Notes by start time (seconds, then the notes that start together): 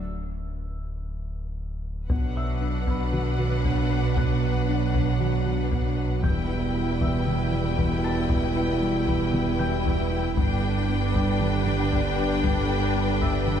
Already playing: D1 E5 E6
2.09 B1 B2 F#3 B3 D4 B4 F#5, taiko
2.36 B4 E5 E6
2.61 D4
2.87 B3 B4 B5, taiko
3.13 F#4, taiko mid
3.39 F#4, taiko mid
3.65 B3, taiko
3.91 B4
4.17 B3 F#6, taiko
4.43 B4
4.69 D4
4.94 B3, taiko
5.21 F#4, taiko mid
5.46 F#4, taiko mid
5.71 B3, taiko
5.97 B4
6.23 E1 E2 B2 E3 G3 B3 E4 B4 G5 G6, taiko
6.49 E4
6.75 G3
7.01 E3 E5 E6, taiko
7.27 B3, taiko mid
7.53 B3, taiko mid
7.78 E3, taiko
8.04 E4 A5 A6
8.30 E3, taiko
8.57 E4
8.82 G3
9.08 E3, taiko
9.34 B3, taiko mid
9.59 B3 G5 G6, taiko mid
9.85 E3, taiko
10.11 E4
10.36 G1 G2 D3 G3 B3 D4 B4 D5 G5, taiko
10.63 G4
10.89 B3
11.15 G3 D5 D6, taiko
11.41 D4, taiko mid
11.67 D4, taiko mid
11.92 G3, taiko
12.18 G4
12.44 G3, taiko
12.70 G4
12.96 B3
13.22 G3 E5 E6, taiko
13.47 D4, taiko mid